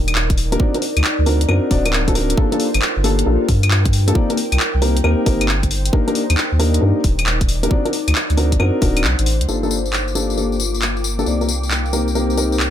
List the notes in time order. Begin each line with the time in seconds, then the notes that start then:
Already playing: D#1 D#4 A#4 D5 G5
0.08 closed hi-hat, claves
0.15 clap
0.30 kick, closed hi-hat
0.38 open hi-hat
0.52 A#3 D4 D#4 G4 A#4, closed hi-hat
0.60 C4 D4 D#4 F#4 D5, kick
0.74 C4 D4 D#4 F#4 A#4, closed hi-hat
0.82 open hi-hat
0.97 D2, closed hi-hat, claves
1.04 clap
1.19 D2
1.25 C4 D4 D#4 F#4 A#4 F#5, open hi-hat
1.41 C5, closed hi-hat
1.49 F#2 C4 D4 D#4 F#4 A#4, claves
1.71 D1 C4 D4 D#4 F#4 D5, kick, open hi-hat
1.85 C4 D4 D#4 F#4 A#4, closed hi-hat, claves
1.93 clap
2.08 C4 D4 D#4 F#4 A4, kick, closed hi-hat
2.15 C4 D4 D#4 F#4 A#4, open hi-hat
2.30 closed hi-hat
2.37 A#3 D4 F4 G4 A4, kick
2.52 A#3 D4 F4 G4 A4, closed hi-hat
2.60 open hi-hat
2.74 G1, closed hi-hat, claves
2.82 clap
2.97 G1
3.04 A#3 D4 F4 G4 A4, open hi-hat
3.19 G5, closed hi-hat
3.26 A#1 A#3 D4 F4 G4 A4
3.49 G2, kick, open hi-hat
3.63 closed hi-hat, claves
3.71 clap
3.85 kick, closed hi-hat
3.93 open hi-hat
4.08 A#3 D4 F4 G4 A4, closed hi-hat
4.15 A#3 C4 D#4 G4 D5, kick
4.30 A#3 C4 D#4 G4 A#4, closed hi-hat
4.37 open hi-hat
4.52 C2, closed hi-hat, claves
4.60 clap
4.74 C2 C5
4.82 A#3 C4 D#4 G4 A#4, open hi-hat
4.97 closed hi-hat
5.04 D#2 A#3 C4 D#4 G4 A#4, claves
5.26 G1 A#3 C4 D#4 G4 A#4, kick, open hi-hat
5.41 closed hi-hat, claves
5.49 clap
5.63 kick, closed hi-hat
5.71 open hi-hat
5.86 closed hi-hat
5.93 A#3 D4 D#4 G4 A#4, kick
6.08 A#3 D4 D#4 G4 A#4, closed hi-hat
6.15 open hi-hat
6.30 D#2, closed hi-hat, claves
6.37 clap
6.52 D#2
6.59 A#3 D4 D#4 G4 A#4, open hi-hat
6.74 D5, closed hi-hat
6.82 G2 A#3 D4 D#4 G4 A#4
7.04 D#1, kick, open hi-hat
7.19 closed hi-hat, claves
7.26 clap
7.41 kick, closed hi-hat
7.49 open hi-hat
7.63 A#3 D4 D#4 G4 A#4, closed hi-hat
7.71 C4 D4 D#4 F#4 D5, kick
7.85 C4 D4 D#4 F#4 A#4, closed hi-hat
7.93 open hi-hat
8.08 D2, closed hi-hat, claves
8.15 clap
8.30 D2, closed hi-hat
8.37 C4 D4 D#4 F#4 A#4, open hi-hat
8.46 C5
8.52 F#5, kick, closed hi-hat
8.60 F#2 C4 D4 D#4 F#4 A#4, claves
8.82 D1 C4 D4 D#4 F#4 A#4, kick, open hi-hat
8.97 closed hi-hat, claves
9.04 C2, clap
9.19 A1, closed hi-hat
9.26 open hi-hat
9.41 D2, closed hi-hat
9.48 G1 A#3 D4 F4 G4 A4 D6, tambourine
9.63 A#3 D4 F4 G4 A4, tambourine
9.71 tambourine
9.86 tambourine
9.93 clap, tambourine
10.08 tambourine
10.15 A#3 D4 F4 G4 A4, tambourine
10.20 G5
10.30 tambourine
10.37 A#3 D4 F4 G4 A4, tambourine
10.52 tambourine
10.60 tambourine
10.74 tambourine
10.82 clap, tambourine
10.97 tambourine
11.04 tambourine
11.19 A#3 D4 F4 G4 A4, tambourine
11.26 C2 A#3 C4 D#4 G4 D5, tambourine
11.41 A#3 C4 D#4 G4 A#4, tambourine
11.49 tambourine
11.63 C5, tambourine
11.71 clap, tambourine
11.79 A#4
11.86 tambourine
11.93 A#3 C4 D#4 G4 A#4, tambourine
12.08 tambourine
12.15 A#3 C4 D#4 G4 A#4, tambourine
12.30 tambourine
12.37 A#3 C4 D#4 G4 A#4, tambourine
12.52 tambourine
12.60 clap, tambourine